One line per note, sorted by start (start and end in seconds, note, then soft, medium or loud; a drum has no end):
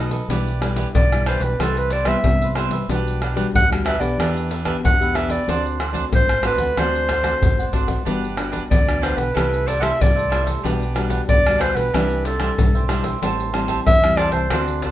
0.00 0.20 B2 medium
0.00 0.26 F#3 medium
0.00 0.16 A3 medium
0.00 0.12 D#4 medium
0.00 0.16 D#4 medium
0.00 0.16 F#4 medium
0.00 0.12 A4 medium
0.00 0.11 B4 medium
0.00 0.11 D#5 medium
0.11 0.29 A4 soft
0.11 0.28 B4 soft
0.11 0.28 D#5 soft
0.11 pandeiro medium
0.11 shaker medium
0.11 surdo soft
0.28 0.84 B1 medium
0.28 0.91 B2 medium
0.28 0.49 G3 soft
0.28 0.49 D4 soft
0.28 0.60 E4 medium
0.28 0.49 E4 medium
0.28 0.60 G4 medium
0.28 0.61 B4 medium
0.28 0.62 D5 medium
0.28 pandeiro medium
0.28 shaker medium
0.28 surdo medium
0.47 pandeiro soft
0.47 shaker soft
0.61 0.92 G3 medium
0.61 0.92 D4 soft
0.61 0.76 E4 soft
0.61 0.92 E4 medium
0.61 0.76 G4 soft
0.61 0.77 B4 medium
0.61 0.77 D5 medium
0.61 pandeiro medium
0.61 tamborim medium
0.61 shaker medium
0.76 0.87 E4 medium
0.76 0.87 G4 medium
0.76 0.87 B4 medium
0.76 0.87 D5 medium
0.76 pandeiro medium
0.76 shaker medium
0.76 surdo soft
0.94 1.36 B1 medium
0.94 1.57 B2 medium
0.94 1.29 D5 medium
0.94 pandeiro medium
0.94 shaker medium
0.94 surdo medium
1.12 1.55 G3 medium
1.12 1.56 D4 medium
1.12 1.56 E4 medium
1.12 pandeiro soft
1.12 tamborim medium
1.12 shaker soft
1.26 1.42 E4 medium
1.26 1.43 G4 medium
1.26 1.41 B4 medium
1.26 1.45 C5 medium
1.26 1.41 D5 medium
1.26 pandeiro medium
1.26 tamborim medium
1.26 shaker medium
1.40 1.56 B1 medium
1.40 1.59 G4 soft
1.40 1.58 B4 soft
1.40 1.63 B4 medium
1.40 1.58 D5 soft
1.40 pandeiro medium
1.40 shaker medium
1.40 surdo soft
1.59 2.15 C2 medium
1.59 2.21 C3 medium
1.59 1.90 G3 medium
1.59 1.90 E4 medium
1.59 1.90 G4 medium
1.59 1.80 A4 medium
1.59 1.92 B4 medium
1.59 1.91 C5 medium
1.59 1.92 E5 medium
1.59 pandeiro medium
1.59 tamborim medium
1.59 shaker medium
1.59 surdo medium
1.77 1.94 B4 medium
1.77 pandeiro soft
1.77 shaker soft
1.90 2.05 G4 soft
1.90 2.06 B4 soft
1.90 2.06 C5 soft
1.90 2.09 D5 medium
1.90 2.06 E5 soft
1.90 pandeiro medium
1.90 shaker medium
2.05 2.50 G3 medium
2.05 2.50 B3 medium
2.05 2.51 E4 medium
2.05 2.16 G4 medium
2.05 2.17 B4 medium
2.05 2.17 C5 medium
2.05 2.17 E5 medium
2.05 2.57 E5 loud
2.05 pandeiro medium
2.05 tamborim medium
2.05 shaker medium
2.05 surdo soft
2.24 2.86 G2 medium
2.24 2.79 C3 medium
2.24 pandeiro medium
2.24 shaker medium
2.24 surdo medium
2.42 2.56 B4 soft
2.42 2.55 C5 soft
2.42 2.56 E5 soft
2.42 pandeiro soft
2.42 shaker soft
2.55 2.75 G3 medium
2.55 2.76 B3 medium
2.55 2.76 E4 medium
2.55 2.71 G4 medium
2.55 2.72 B4 medium
2.55 2.72 C5 medium
2.55 2.71 E5 medium
2.55 pandeiro medium
2.55 tamborim medium
2.55 shaker medium
2.71 2.88 B4 soft
2.71 2.88 C5 soft
2.71 2.88 E5 soft
2.71 pandeiro medium
2.71 shaker medium
2.71 surdo soft
2.89 3.44 B1 medium
2.89 3.51 B2 medium
2.89 3.20 G3 medium
2.89 3.20 D4 medium
2.89 3.20 F#4 medium
2.89 3.20 G4 medium
2.89 3.21 B4 medium
2.89 3.22 F#5 medium
2.89 pandeiro medium
2.89 shaker medium
2.89 surdo medium
3.07 pandeiro soft
3.07 shaker soft
3.21 3.35 D4 soft
3.21 3.35 G4 medium
3.21 3.35 B4 medium
3.21 3.35 F#5 medium
3.21 pandeiro medium
3.21 tamborim medium
3.21 shaker medium
3.35 3.64 G3 medium
3.35 3.64 D4 medium
3.35 3.46 D4 medium
3.35 3.64 F#4 medium
3.35 3.46 G4 medium
3.35 3.46 B4 medium
3.35 3.46 F#5 medium
3.35 pandeiro medium
3.35 shaker medium
3.35 surdo soft
3.53 3.95 D2 medium
3.53 4.15 B2 medium
3.53 3.70 F#5 loud
3.53 pandeiro medium
3.53 shaker medium
3.53 surdo loud
3.70 3.98 G3 medium
3.70 3.98 D4 medium
3.70 3.98 F#4 medium
3.70 pandeiro soft
3.70 tamborim medium
3.70 shaker soft
3.84 4.00 D4 medium
3.84 4.00 G4 medium
3.84 3.99 B4 medium
3.84 4.01 E5 medium
3.84 3.98 F#5 medium
3.84 pandeiro medium
3.84 tamborim medium
3.84 shaker medium
3.99 4.15 B1 medium
3.99 4.61 B3 medium
3.99 4.61 D4 medium
3.99 4.61 G4 medium
3.99 4.17 G4 soft
3.99 4.17 B4 soft
3.99 4.34 D5 medium
3.99 4.16 F#5 soft
3.99 pandeiro medium
3.99 shaker medium
3.99 surdo soft
4.18 4.73 E2 medium
4.18 4.80 E3 medium
4.18 4.49 D4 medium
4.18 4.49 G4 medium
4.18 4.50 B4 medium
4.18 4.51 E5 medium
4.18 pandeiro medium
4.18 tamborim medium
4.18 shaker medium
4.18 surdo medium
4.37 pandeiro soft
4.37 shaker soft
4.50 4.64 D4 soft
4.50 4.65 G4 soft
4.50 4.65 B4 soft
4.50 4.66 E5 soft
4.50 pandeiro medium
4.65 4.93 B3 medium
4.65 4.93 D4 medium
4.65 4.75 D4 medium
4.65 4.94 G4 medium
4.65 4.76 G4 medium
4.65 4.76 B4 medium
4.65 4.76 E5 medium
4.65 pandeiro medium
4.65 tamborim medium
4.65 shaker medium
4.65 surdo soft
4.83 5.39 E2 medium
4.83 5.45 B2 medium
4.83 5.17 F#5 medium
4.83 pandeiro medium
4.83 shaker medium
4.83 surdo loud
5.00 5.43 B3 medium
5.00 5.43 D4 medium
5.00 5.44 G4 medium
5.00 5.15 G4 soft
5.00 5.15 B4 soft
5.00 5.15 E5 medium
5.00 pandeiro soft
5.00 shaker soft
5.14 5.30 D4 medium
5.14 5.30 G4 medium
5.14 5.29 B4 medium
5.14 5.32 E5 medium
5.14 5.28 E5 medium
5.14 pandeiro medium
5.14 tamborim medium
5.29 5.47 G4 soft
5.29 5.46 B4 soft
5.29 5.64 D5 medium
5.29 5.46 E5 medium
5.29 pandeiro medium
5.29 shaker medium
5.29 surdo soft
5.47 6.03 D2 medium
5.47 6.09 D3 medium
5.47 5.78 A3 medium
5.47 5.78 C4 medium
5.47 5.78 D4 medium
5.47 5.78 F#4 medium
5.47 5.79 C5 medium
5.47 5.79 D5 medium
5.47 5.80 F#5 medium
5.47 pandeiro medium
5.47 shaker medium
5.47 surdo medium
5.66 pandeiro soft
5.66 shaker soft
5.79 5.92 D4 soft
5.79 5.93 C5 soft
5.79 5.93 D5 soft
5.79 5.93 F#5 soft
5.79 pandeiro medium
5.79 tamborim medium
5.93 6.38 A3 medium
5.93 6.38 C4 medium
5.93 6.04 D4 medium
5.93 6.39 F#4 medium
5.93 6.04 C5 medium
5.93 6.04 D5 medium
5.93 6.05 F#5 medium
5.93 pandeiro medium
5.93 shaker medium
5.93 surdo soft
6.11 6.54 A1 medium
6.11 6.74 A2 medium
6.11 6.44 C5 loud
6.11 pandeiro medium
6.11 shaker medium
6.11 surdo loud
6.29 pandeiro soft
6.29 tamborim medium
6.29 shaker soft
6.43 6.71 A3 medium
6.43 6.71 C4 medium
6.43 6.59 D4 medium
6.43 6.72 F#4 medium
6.43 6.81 B4 medium
6.43 6.59 C5 medium
6.43 6.59 D5 medium
6.43 6.58 F#5 medium
6.43 pandeiro medium
6.43 tamborim medium
6.58 6.73 D2 medium
6.58 6.76 C5 soft
6.58 6.76 D5 soft
6.58 6.75 F#5 soft
6.58 pandeiro medium
6.58 shaker medium
6.58 surdo soft
6.77 7.32 D2 medium
6.77 7.39 D3 medium
6.77 7.08 A3 medium
6.77 7.08 C4 medium
6.77 7.07 D4 medium
6.77 7.08 F#4 medium
6.77 7.08 C5 medium
6.77 7.75 C5 medium
6.77 7.09 D5 medium
6.77 7.09 F#5 medium
6.77 pandeiro medium
6.77 tamborim medium
6.77 shaker medium
6.77 surdo medium
6.95 pandeiro soft
6.95 shaker soft
7.08 7.22 D4 soft
7.08 7.22 C5 soft
7.08 7.23 D5 soft
7.08 7.23 F#5 soft
7.08 pandeiro medium
7.08 tamborim medium
7.08 shaker medium
7.08 surdo soft
7.23 7.68 A3 medium
7.23 7.68 C4 medium
7.23 7.33 D4 medium
7.23 7.68 F#4 medium
7.23 7.34 C5 medium
7.23 7.34 D5 medium
7.23 7.34 F#5 medium
7.23 pandeiro medium
7.23 tamborim medium
7.23 shaker medium
7.23 surdo soft
7.41 7.97 G#1 medium
7.41 surdo medium
7.41 pandeiro medium
7.41 shaker medium
7.41 surdo medium
7.59 7.73 C5 soft
7.59 7.73 D5 soft
7.59 7.74 F#5 soft
7.59 pandeiro soft
7.59 shaker soft
7.73 8.01 A3 soft
7.73 8.01 C4 medium
7.73 7.89 D4 medium
7.73 8.02 F#4 medium
7.73 7.88 C5 medium
7.73 7.88 D5 medium
7.73 7.86 F#5 medium
7.73 pandeiro medium
7.73 shaker medium
7.73 surdo medium
7.88 8.05 C5 soft
7.88 8.05 D5 soft
7.88 8.04 F#5 soft
7.88 pandeiro medium
7.88 shaker medium
7.88 surdo medium
8.05 8.61 G1 medium
8.05 8.68 G3 medium
8.05 8.26 B3 medium
8.05 8.35 D4 medium
8.05 8.26 D4 soft
8.05 8.26 F#4 medium
8.05 8.36 G4 medium
8.05 8.37 B4 medium
8.05 8.37 F#5 medium
8.05 pandeiro medium
8.05 shaker medium
8.05 surdo medium
8.24 pandeiro soft
8.24 shaker soft
8.36 8.82 B3 medium
8.36 8.51 D4 soft
8.36 8.82 D4 soft
8.36 8.82 F#4 medium
8.36 8.50 G4 soft
8.36 8.51 B4 soft
8.36 8.51 F#5 medium
8.36 pandeiro medium
8.36 tamborim medium
8.52 8.62 D4 medium
8.52 8.62 G4 medium
8.52 8.62 B4 medium
8.52 8.63 F#5 medium
8.52 pandeiro medium
8.52 shaker medium
8.52 surdo soft
8.70 9.12 D2 medium
8.70 9.33 D3 medium
8.70 9.04 D5 medium
8.70 pandeiro medium
8.70 shaker medium
8.70 surdo loud
8.87 9.31 B3 medium
8.87 9.31 D4 medium
8.87 9.31 F#4 medium
8.87 pandeiro soft
8.87 tamborim medium
8.87 shaker soft
9.01 9.17 D4 medium
9.01 9.18 G4 medium
9.01 9.17 B4 medium
9.01 9.19 C5 medium
9.01 9.15 F#5 medium
9.01 pandeiro medium
9.01 tamborim medium
9.01 shaker medium
9.17 9.32 B1 medium
9.17 9.34 G4 soft
9.17 9.69 B4 medium
9.17 9.34 B4 soft
9.17 9.33 F#5 soft
9.17 pandeiro medium
9.17 shaker medium
9.17 surdo soft
9.34 9.91 C2 loud
9.34 9.97 C3 medium
9.34 9.66 A3 medium
9.34 9.64 E4 medium
9.34 9.66 E4 medium
9.34 9.66 G4 medium
9.34 9.65 A4 medium
9.34 9.66 E5 medium
9.34 pandeiro medium
9.34 tamborim medium
9.34 shaker medium
9.34 surdo medium
9.54 pandeiro soft
9.54 shaker soft
9.66 9.79 E4 soft
9.66 9.80 A4 soft
9.66 9.79 C5 soft
9.66 9.82 D5 medium
9.66 9.79 E5 soft
9.66 pandeiro medium
9.66 surdo soft
9.80 10.27 A3 medium
9.80 9.91 E4 medium
9.80 10.27 E4 medium
9.80 10.27 G4 medium
9.80 9.91 A4 medium
9.80 9.91 C5 medium
9.80 9.91 E5 medium
9.80 10.03 E5 medium
9.80 9.84 F#5 medium
9.80 pandeiro medium
9.80 tamborim medium
9.80 shaker medium
9.80 surdo soft
10.00 10.55 C2 medium
10.00 10.62 G3 medium
10.00 10.49 D5 medium
10.00 pandeiro medium
10.00 shaker medium
10.00 surdo loud
10.16 10.29 A4 soft
10.16 10.30 C5 soft
10.16 10.30 E5 soft
10.16 pandeiro soft
10.16 shaker soft
10.29 10.59 A3 soft
10.29 10.46 E4 medium
10.29 10.59 E4 medium
10.29 10.60 G4 medium
10.29 10.45 A4 medium
10.29 10.44 C5 medium
10.29 10.43 E5 medium
10.29 pandeiro medium
10.29 tamborim medium
10.44 10.62 A4 soft
10.44 10.62 C5 soft
10.44 10.61 E5 medium
10.44 pandeiro medium
10.44 shaker medium
10.44 surdo soft
10.63 11.19 B1 medium
10.63 11.26 B2 medium
10.63 10.84 G3 medium
10.63 10.93 D4 medium
10.63 10.84 D4 medium
10.63 10.84 F#4 medium
10.63 10.94 G4 medium
10.63 10.94 B4 medium
10.63 10.95 F#5 medium
10.63 pandeiro medium
10.63 shaker medium
10.63 surdo medium
10.82 pandeiro soft
10.82 shaker soft
10.94 11.40 G3 medium
10.94 11.08 D4 medium
10.94 11.40 D4 medium
10.94 11.40 F#4 medium
10.94 11.08 G4 medium
10.94 11.09 B4 medium
10.94 11.09 F#5 medium
10.94 pandeiro medium
10.94 tamborim medium
10.94 shaker medium
11.09 11.20 D4 medium
11.09 11.20 G4 medium
11.09 11.21 B4 medium
11.09 11.21 F#5 medium
11.09 pandeiro medium
11.09 shaker medium
11.09 surdo soft
11.29 11.71 D2 medium
11.29 11.90 B2 medium
11.29 11.63 D5 loud
11.29 pandeiro medium
11.29 shaker medium
11.29 surdo loud
11.47 11.90 G3 medium
11.47 11.90 D4 medium
11.47 11.90 F#4 medium
11.47 pandeiro soft
11.47 tamborim medium
11.47 shaker soft
11.58 11.75 D4 medium
11.58 11.75 G4 medium
11.58 11.74 B4 medium
11.58 11.77 C5 medium
11.58 11.73 F#5 medium
11.58 pandeiro medium
11.58 tamborim medium
11.58 shaker medium
11.75 11.90 B1 medium
11.75 11.92 G4 soft
11.75 11.92 B4 soft
11.75 12.25 B4 medium
11.75 11.91 F#5 soft
11.75 pandeiro medium
11.75 shaker medium
11.75 surdo soft
11.93 12.49 C2 loud
11.93 12.55 C3 medium
11.93 12.38 G3 medium
11.93 12.23 D4 medium
11.93 12.38 D4 medium
11.93 12.38 E4 medium
11.93 12.24 G4 medium
11.93 12.25 E5 medium
11.93 pandeiro medium
11.93 tamborim medium
11.93 shaker medium
11.93 surdo medium
12.11 pandeiro soft
12.11 shaker soft
12.24 12.39 D4 soft
12.24 12.38 G4 soft
12.24 12.87 A4 medium
12.24 12.39 C5 soft
12.24 12.40 E5 soft
12.24 pandeiro medium
12.24 shaker medium
12.39 12.57 G3 medium
12.39 12.50 D4 medium
12.39 12.84 D4 medium
12.39 12.85 E4 medium
12.39 12.50 G4 medium
12.39 12.50 C5 medium
12.39 12.50 E5 medium
12.39 pandeiro medium
12.39 tamborim medium
12.39 shaker medium
12.39 surdo soft
12.58 13.14 B1 medium
12.58 12.87 G3 medium
12.58 pandeiro medium
12.58 shaker medium
12.58 surdo loud
12.75 12.89 G4 soft
12.75 12.89 C5 soft
12.75 12.90 E5 soft
12.75 pandeiro soft
12.75 shaker soft
12.88 13.17 G3 medium
12.88 13.04 D4 medium
12.88 13.17 D4 medium
12.88 13.17 E4 medium
12.88 13.04 G4 medium
12.88 13.03 C5 medium
12.88 13.03 E5 medium
12.88 pandeiro medium
12.88 tamborim medium
12.88 shaker medium
13.04 13.21 G4 soft
13.04 13.21 C5 soft
13.04 13.20 E5 soft
13.04 pandeiro medium
13.04 shaker medium
13.04 surdo soft
13.22 13.78 A1 loud
13.22 13.84 A2 medium
13.22 13.50 G3 medium
13.22 13.50 C4 medium
13.22 13.50 E4 medium
13.22 13.52 G4 medium
13.22 13.53 C5 medium
13.22 13.53 E5 medium
13.22 13.54 A5 medium
13.22 pandeiro medium
13.22 shaker medium
13.22 surdo medium
13.40 pandeiro soft
13.40 shaker soft
13.53 13.98 G3 medium
13.53 13.98 C4 medium
13.53 13.98 E4 medium
13.53 13.67 G4 soft
13.53 13.67 C5 medium
13.53 13.68 E5 medium
13.53 13.68 A5 medium
13.53 pandeiro medium
13.53 tamborim medium
13.53 shaker medium
13.68 13.79 G4 medium
13.68 13.79 C5 medium
13.68 13.79 E5 medium
13.68 13.79 A5 medium
13.68 pandeiro medium
13.68 shaker medium
13.68 surdo soft
13.87 14.28 E2 medium
13.87 14.49 E3 medium
13.87 14.19 E5 loud
13.87 pandeiro medium
13.87 shaker medium
13.87 surdo loud
14.04 14.47 G3 medium
14.04 14.47 C4 medium
14.04 14.48 E4 medium
14.04 pandeiro soft
14.04 tamborim medium
14.04 shaker soft
14.17 14.34 G4 medium
14.17 14.34 C5 medium
14.17 14.32 D5 medium
14.17 14.33 E5 medium
14.17 14.32 A5 medium
14.17 pandeiro medium
14.17 tamborim medium
14.17 shaker medium
14.32 14.48 C2 medium
14.32 14.64 C5 medium
14.32 14.50 C5 soft
14.32 14.50 E5 soft
14.32 14.50 A5 soft
14.32 pandeiro medium
14.32 shaker medium
14.32 surdo soft
14.50 14.91 D2 loud
14.50 14.91 D3 medium
14.50 14.91 A3 medium
14.50 14.91 C4 medium
14.50 14.81 D4 medium
14.50 14.91 F#4 medium
14.50 14.82 C5 medium
14.50 14.83 D5 medium
14.50 14.83 F#5 medium
14.50 pandeiro medium
14.50 tamborim medium
14.50 shaker medium
14.50 surdo medium
14.68 pandeiro soft
14.68 shaker soft
14.82 14.91 D4 soft
14.82 14.91 C5 soft
14.82 14.91 D5 medium
14.82 14.91 F#5 soft
14.82 pandeiro medium
14.82 surdo soft